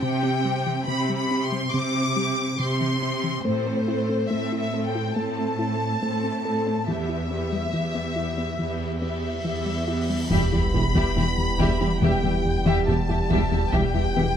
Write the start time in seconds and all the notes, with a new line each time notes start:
0.02 C3 C4 G4 G5
0.23 C4
0.45 G3 C4 G4
0.67 E3
0.87 C3 C4 G4 B5
1.09 G3
1.17 B5
1.30 C4 G4
1.45 C6
1.52 G3
1.73 C3 C4 G4 D6
2.16 G3 C4 G4
2.59 C3 C4 G4 C6
2.81 E3
3.02 C4 G4
3.24 E3
3.45 A2 A3 C4 A4 C5
3.67 A4
3.88 C4 E4 A4
4.09 C4
4.31 A2 A3 C4 A4 E5
4.52 E4
4.58 E5
4.74 C4 A4
4.88 G5
4.95 E4
5.16 A2 A3 C4 A4 A5
5.59 C4 E4 A4
6.02 A2 A3 C4 A4
6.24 C4
6.45 C4 A4
6.67 C4
6.88 E2 E3 B3 G4 E5, cymbal swell
7.09 E4
7.31 B3 G4
7.53 G3
7.73 E2 E3 B3 G4
7.95 B3
8.16 B3 E4 G4
8.38 B3
8.59 E2 E3 B3 G4
9.02 B3 G4 E5
9.45 E2 E3 B3 G4
9.66 G3
9.88 B3 E4 G4
10.10 G3
10.30 E1 E2 E3 G3 B3 G4 E5 B5, taiko, sub drop
10.52 E2 G3 E4 G4 E5
10.73 E1 E2 E3 G3 B3 G4 E5
10.95 E2 E3 G3 G4 E5, taiko
11.16 E1 E2 E3 G3 B3 G4 E5
11.38 E2
11.59 E1 E2 E3 G3 G4 E5, taiko
11.80 E2 E3 G3 B3 G4 E5
12.01 E1 E2 E3 G3 G4 E5 G5
12.23 E2 G3 G4 E5
12.45 E2
12.66 E2 E3 G3 G4 E5
12.87 E1 E2 G3 E4 G4 E5 A5
13.09 E2 G3 E4 G4 E5
13.30 E1 E2 E3 G3 G4 E5, taiko
13.51 E2 G3 G4 E5
13.72 E1 E2 E3 G3 B3 G4 E5 G5, taiko
13.94 E2 G3 E4 G4 E5
14.16 E1 E2 E3 G3 B3 G4 E5